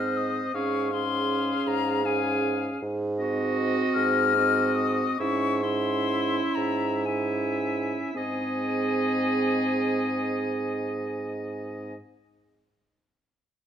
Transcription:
Already playing: G#2 C4 C5 D#5 F6
0.17 D#6
0.54 G#2 C#4 G#4 F5 C#6
0.91 C#4 G#4 F5 C6
1.67 G#2 A#5
2.04 C#4 G#4 F5 G#5
2.82 G#2
3.19 C4 F#4 D#5
3.94 G#2 F6
4.36 C4 F#4 D#5
4.75 D#6
5.19 G#2 C#4 E4 E5 C#6
5.62 C#4 E4 E5 C6
6.55 G#2 A#5
7.05 C#4 E4 E5 G#5
8.14 G#2 C4 G#4 D#5 G#5

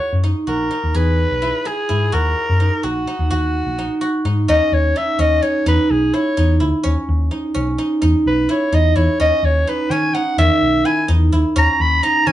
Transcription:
Already playing: E4 F#4 G#4 C#5
0.13 F#2
0.23 D#4
0.47 A#1 F#4 A#4
0.71 D#4
0.84 D#2
0.94 E2 G#4 B4
1.31 B1
1.42 E4
1.65 G#4
1.89 G#2 E4
2.12 D#2 F#4 A#4
2.49 F#2
2.60 D#4
2.83 A#1 F#4
3.07 D#4
3.19 D#2
3.30 D#2 F#4
3.66 A#1
3.78 D#4
4.01 F#4
4.25 G#2 D#4
4.48 D#2 C#4 D#5
4.72 D#2 C#5
4.96 D#4 E5
5.19 D#2 C#4 D#5
5.42 D#4 C#5
5.66 E2 D#4 B4
5.90 B1 G#4
6.14 E4 C#5
6.37 E2 D#4
6.60 D2 E4
6.83 D#2 C#4
7.09 D#2
7.31 D#4
7.54 B1 C#4
7.78 D#4
8.02 E2 D#4
8.26 B1 B4
8.49 E4 C#5
8.72 E2 D#4 D#5
8.96 E2 E4 C#5
9.20 D#2 C#4 D#5
9.43 D#2 C#5
9.67 D#4 B4
9.90 D#3 C#4 G#5
10.14 D#4 F#5
10.38 E2 D#3 E5
10.62 B1
10.85 E4 G#5
11.08 E2 D#4
11.32 D#2 E4
11.56 D#2 C#4 A#5
11.80 D#2 B5
12.03 D#4 A#5
12.27 D#3 C#4 G#5

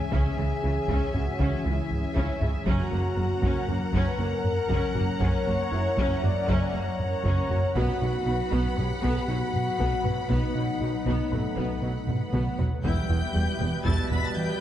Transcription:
Already playing: E3 C#4 G#4 C#5 E5 G#5
0.12 C#2 C#3 C#4 G#4, taiko
0.38 C#2 C#3 E3 G#3
0.63 C#2 C#3 E3
0.88 C#2 C#3 C#4, taiko
1.14 C#2 C#3 G#3 C#4 F#4, taiko low-mid
1.39 C#2 C#3 C#4, taiko
1.64 C#2 C#3 E3 G#3 E4
1.91 C#2, taiko low-mid
2.16 C#2 C#3 C#4, taiko
2.41 C#2 C#3 G#3 C#4, taiko low-mid
2.66 F#1 F#2 F#3 C#4 F#4 A#4 C#5 F#5 A#5, taiko
2.92 F#1 F#2 A#3
3.17 F#1 F#2 F#3 A#3
3.42 F#1 F#2 F#3 C#4, taiko
3.68 F#1 F#2 A#3 F#4 A#4, taiko low-mid
3.92 F#1 F#2 F#3 C#4 C#5, taiko
4.07 B4
4.18 F#1 F#2 A#3 A#4
4.44 F#2, taiko low-mid
4.69 F#1 F#2 F#3 C#4, taiko
4.95 F#1 F#2 A#3 F#4, taiko low-mid
5.19 F#1 F#2 F#3 A#3 C#4 A#4 C#5, taiko
5.46 F#1 F#2 A#3
5.71 F#1 F#2 F#3 A#3 E4 E5
5.97 F#1 F#2 F#3 C#4, taiko
6.23 F#1 F#2 A#3 F#4 D5, taiko low-mid
6.48 F#1 F#2 F#3 C#4 E5, taiko
6.61 D5
6.73 F#1 F#2 A#3 C#5
7.00 F#2, taiko low-mid
7.24 F#1 F#2 F#3 C#4 C#5, taiko
7.50 F#1 F#2 A#3 F#4, taiko low-mid
7.75 B1 B2 F#3 B3 F#4 B4 F#5 B5, taiko
8.01 B1 B2 F#3 D#4
8.26 B1 B2 D#3 D#4
8.52 B1 B2 B3, taiko
8.77 B1 B2 F#3 G4 B4, taiko low-mid
9.02 B1 B2 B3 A4, taiko
9.17 G4
9.28 B1 B2 F#3 D#4 F#4
9.53 B2, taiko low-mid
9.79 B1 B2 B3, taiko
10.04 B1 B2 F#3 B4, taiko low-mid
10.29 B1 B2 B3 D#4, taiko
10.55 B1 B2 F#3 D#4
10.80 B1 B2 D#3 D#4
11.05 B1 B2 B3, taiko
11.31 B1 B2 F#3 A3 A4 B4, taiko low-mid
11.57 B1 B2 B3, taiko
11.82 B1 B2 F#3 D#4
12.07 B2, taiko low-mid
12.33 B1 B2 B3, taiko mid
12.58 B1 B2 F#3 B4, taiko low
12.83 E1 E2 B2 E3 G3 B3 E4 G4 B4 E5 G5 G6, taiko
13.09 E1 E2 B3 E4
13.34 E1 E2 G3 G4
13.59 E1 E2 E3 B3
13.85 E1 E2 E3 E4 G4 A5 A6, taiko
14.10 E1 E2 G3 B3 B5 B6, taiko low-mid
14.24 A5 A6
14.36 E3 B4 G5 G6

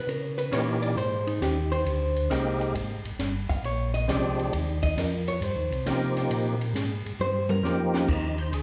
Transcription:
0.07 C#3 A#4, ride
0.38 B4, ride
0.52 A#2 E3 A#3 C#4 D#4 G4 C#5, snare, hi-hat pedal, ride
0.82 D5, ride
0.96 G#2 C5, ride
1.27 D#4, ride
1.41 D#2 G4, snare, hi-hat pedal, ride
1.72 C5, ride
1.85 D2, ride
2.16 ride
2.30 C2 G#3 A#3 C4 D#4 G4, snare, hi-hat pedal, ride
2.61 ride
2.74 G#1, ride
3.05 G#1, ride
3.19 G1, snare, hi-hat pedal, ride
3.49 G1 F5, kick, ride
3.63 A#1 C#5, ride
3.94 D#5, ride
4.08 C2 F3 G#3 C4 D4 G4 D5, snare, hi-hat pedal, ride
4.39 ride
4.53 D#2, ride
4.83 D#5, kick, ride
4.96 F2 A#4, snare, hi-hat pedal, ride
5.28 C#5, ride
5.41 G2 C5, ride
5.56 D#2
5.71 C2, ride
5.85 C3 F3 A#3 C4 D#4 G4, snare, hi-hat pedal, ride
6.16 snare, ride
6.30 A#2, ride
6.61 ride
6.74 G#2, snare, hi-hat pedal, ride
7.06 G#2, ride
7.19 G2 C5, high tom
7.49 A#4, high tom
7.63 F2 F3 A#3 C4 D#4 G4, snare, hi-hat pedal
7.94 D#4, snare
8.08 D#2, kick, crash
8.38 C5, ride
8.52 D2 G#4, hi-hat pedal, ride

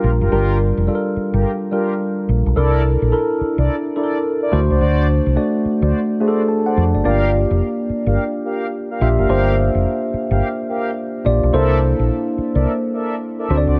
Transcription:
Already playing: G3 D4 F4 G4 A#4
0.04 A#1
0.21 F#1 F4 G4 A#4
0.31 G1 G3 D4 F4 G4 A#4
0.77 F1
0.87 G3 D4 F4 A4
0.95 A#4
1.16 muted fingered electric bass stroke
1.33 G1 F4 G4 A#4
1.72 G3 D4 F4 G4 A#4
2.29 A#1
2.46 B1
2.56 C2 D4 E4 A4 A#4 D5
3.02 A#1
3.12 D4 E4 A4 A#4
3.41 muted fingered electric bass stroke
3.57 C2 E4 A4 A#4 D5
3.96 D4 E4 A4 A#4 D5
4.04 A#4
4.42 E4 A4 A#4 D5
4.52 D2 A3 D4 F#4 C5
4.70 C#2 F#4 C5 D5
4.80 D2 F#4 C5 D5
5.26 C2
5.36 A3 D4 F#4 D5
5.65 muted fingered electric bass stroke
5.82 D2 F#4 C5 D5
6.20 A3 D4 F#4 G#4 C5 D5
6.28 A4
6.48 A5
6.66 F#4 C5 D5 F#5
6.77 F2
6.95 F#1 D5
7.04 G1 A#3 D4 F4 G4 A#4 D5 F5
7.50 F1
7.89 muted fingered electric bass stroke
8.06 G1 G4 A#4 F5
8.45 G4 A#4 F5
8.90 G4 A#4 F5
9.01 A#1 A#3 D4 F4 G4 E5
9.18 F#1 G4 A#4 F5
9.29 G1 A#3 D4 F4 G4 A#4 C5 F5
9.75 F1
10.14 muted fingered electric bass stroke
10.30 G1 G4 A#4 F5
10.69 G4 A#4 F5
11.25 A#1 A#3 D4 F4 G4 D5
11.43 B1
11.53 C2 A#3 D4 E4 A4 A#4 C5 D5 E5
11.99 A#1
12.38 muted fingered electric bass stroke
12.54 C2 A4 A#4 D5 E5
12.93 A4 A#4 D5 E5
13.38 A4 A#4 D5 E5
13.49 D2 C4 D4 F#4 A4 C5
13.57 D5
13.67 C#2 F#4 C5 D5

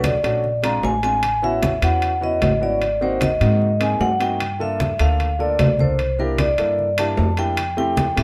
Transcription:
Already playing: B1 A3 C#4 D4 F#4
0.04 D5, high conga, high timbale, low timbale
0.23 A#1 A3 C#4 D4 F#4, high conga, high timbale
0.44 high conga
0.63 G#3 C4 D4 F4 A#5, high conga, high timbale
0.83 A1 G#5, high conga, low timbale
1.03 G#3 C4 D4 F4 G#5, high timbale
1.23 high conga, high timbale
1.42 B3 C#4 E4 F#4 E5, high conga
1.63 high conga, high timbale, low timbale
1.82 E2 B3 C#4 E4 F#4 F#5, high conga, high timbale
2.02 high conga, high timbale
2.21 B3 C#4 E4 F#4 D#5, high conga
2.41 G#1, high conga, high timbale, low timbale
2.61 B3 C#4 E4 F#4 D5
2.82 high conga, high timbale
3.01 A#3 C4 D#4 F#4 C5, high conga
3.21 D#5, high conga, high timbale, low timbale
3.40 G#2 A#3 C4 D#4 F#4, high conga, high timbale
3.62 high conga
3.79 A#3 C4 D#4 G#4 G#5, high conga, high timbale
4.00 G2 F#5, high conga, low timbale
4.19 A#3 C4 D#4 F#4 G5, high timbale
4.40 high conga, high timbale
4.59 A#3 D4 F4 A4 E5, high conga
4.80 high conga, high timbale, low timbale
4.99 D2 A#3 D4 F4 A4 F5, high conga, high timbale
5.20 high conga, high timbale
5.39 A#3 D4 F4 A4 D5, high conga
5.59 C2, high conga, high timbale, low timbale
5.79 A#3 D4 F4 A4 C5, high conga
5.99 high conga, high timbale
6.19 A#3 D4 E4 G4 A#4, high conga
6.38 D5, high conga, high timbale, low timbale
6.58 G2 A#3 D4 E4 A4, high conga, high timbale
6.79 high conga
6.98 A#3 D4 E4 G4 A5, high conga, high timbale
7.17 F2, high conga, low timbale
7.37 A#3 D4 E4 G4 G5, high timbale
7.57 high conga, high timbale
7.77 A3 C4 E4 G4 G5, high conga
7.97 high conga, high timbale, low timbale
8.16 A2 A3 C4 E4 G4 E5, high conga, high timbale

